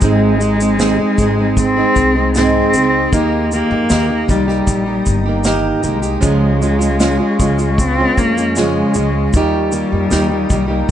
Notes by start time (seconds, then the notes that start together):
Already playing: G#3 D#6
0.00 G#1 G#2 D#3 G#3 D#4 G#4 D#5 C6, kick, shaker
0.04 C4 G#4
0.39 G#3 C4 D#4 G#4, shaker
0.60 G#3 C4 D#4 G#4, shaker
0.78 G#2 D#3 G#3 C4 D#4 G#4, snare, shaker
0.99 G#3 C4 D#4 G#4
1.18 G#1 G#3 C4 D#4, kick, shaker
1.23 G#4
1.38 G#3 C4 D#4 G#4
1.57 C4, kick, shaker
1.77 G#3 C4 D#4 G#4
1.96 C2, kick, shaker
2.15 G#3 C4 D#4 G#4
2.35 G#2 D#3 G#3 C4 D#4 G#4, snare, shaker
2.74 C#2 G#3 C4 D#4 G#4, shaker
3.13 D#2 D#3 A#3 D#4 G4 A#5, kick, shaker
3.52 D#3 A#3 D#4, shaker
3.56 G4
3.71 F2 D#4 G4
3.75 A#3
3.90 D#2 D#3 A#3 D#4 G4, snare, shaker
4.09 A#3 D#4 G4
4.28 C2 D#3 G3 A#3 D#4 G4, kick, shaker
4.48 A#3 D#4 G4, snare
4.67 A#1, kick, shaker
4.86 A#3 D#4 G4
5.06 G1, kick, shaker
5.26 A#3 D#4 G4
5.44 D#3 A#3 D#4 G4, snare, shaker
5.82 C2 D#3 G#3 A#3 D#4 G4, shaker
6.02 A#3 D#4 G4, shaker
6.21 C#2 C#3 F3 G#3 C#4 F4 F5 G#5 C#6, kick, shaker
6.61 F3 G#3 C#4 F4, shaker
6.79 G#3 C#4 F4, shaker
6.99 C#3 F3 G#3 C#4 F4, snare, shaker
7.20 G#3 C#4 F4
7.39 C#2 F3 G#3 C#4 F4, kick, shaker
7.59 G#3 C#4 F4, shaker
7.78 C4, kick, shaker
7.98 G#3 C#4 F4
8.17 F2 A#3, kick, shaker
8.37 G#3 C#4 F4, shaker
8.56 C#3 F3 G#3 C#4 F4, snare, shaker
8.94 C#2 F3 G#3 C#4, shaker
8.98 F4
9.33 D#2 D#3 G3 A#3 D#4 G4 D#5 A#5 D#6, kick, shaker
9.72 D#3 A#3 D#4 G4, shaker
9.92 F2 A#3 D#4 G4
10.10 D#2 D#3 A#3 D#4 G4, snare, shaker
10.29 A#3 D#4 G4
10.49 C2 D#3 A#3 D#4 G4, kick, shaker
10.68 A#3 D#4 G4